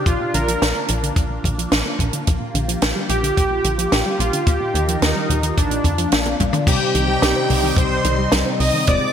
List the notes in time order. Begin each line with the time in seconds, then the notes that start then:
Already playing: D4
0.06 A#1 A#3 F4, kick, closed hi-hat
0.20 A#2
0.34 A#1 D3 A#4, closed hi-hat
0.48 F3, closed hi-hat
0.62 A#1, snare, closed hi-hat
0.75 A#3
0.88 A#1 A#2, closed hi-hat
1.03 D3, closed hi-hat
1.16 A#1, kick, closed hi-hat
1.30 A#2
1.44 A#1 D3, kick, closed hi-hat
1.58 F3, closed hi-hat
1.72 A#1, snare, closed hi-hat
1.86 A#3
1.99 A#1 A#2, kick, closed hi-hat
2.13 D3, closed hi-hat
2.27 A#1 G4, kick, closed hi-hat
2.40 A#2
2.54 A#1 D3, closed hi-hat
2.68 F3, closed hi-hat
2.82 A#1, snare, closed hi-hat
2.96 G3
3.09 A#1 A#2 G4, closed hi-hat
3.23 D3, closed hi-hat
3.37 A#1, kick, closed hi-hat
3.51 A#2
3.64 A#1 D3, closed hi-hat
3.78 F3, closed hi-hat
3.92 A#1, snare, closed hi-hat
4.06 G3
4.19 A#1 A#2 F4, closed hi-hat
4.33 D3, closed hi-hat
4.47 D#2 D#3 D#4 G4 A#4, kick, closed hi-hat
4.61 A#2
4.74 D#2 D#3, closed hi-hat
4.88 F3, closed hi-hat
5.02 D#2 D#4, snare, closed hi-hat
5.16 G3
5.29 D#2 A#2, closed hi-hat
5.43 D#3, closed hi-hat
5.57 A#1 A#3 D4, kick, closed hi-hat
5.71 A#2, closed hi-hat
5.84 F2 D3, kick, closed hi-hat
5.98 F3, closed hi-hat
6.12 A#1, snare, closed hi-hat
6.25 A#3, closed hi-hat, high tom
6.40 A#1 A#2, kick, closed hi-hat, mid tom
6.53 D3, closed hi-hat, mid tom
6.67 C2 C3 G3 C4 D#4 G4 C5 G5, kick, closed hi-hat, crash
6.81 C3
6.94 C2 D#3 G4 G5, closed hi-hat
7.08 G3
7.22 C2, snare, closed hi-hat
7.36 C4
7.50 C2 C3 G3 C4 D#4 G4 C5, open hi-hat
7.63 D#3
7.77 C2 C5 C6, kick, closed hi-hat
7.91 C3
8.04 C2 D#3, closed hi-hat
8.18 G3
8.32 C2, snare, closed hi-hat
8.46 C4
8.59 C2 C3 D#5 D#6, open hi-hat
8.74 D#3
8.87 F1 G#3 C4 F4 G#4 C5 D5 D6, kick, closed hi-hat
9.01 C3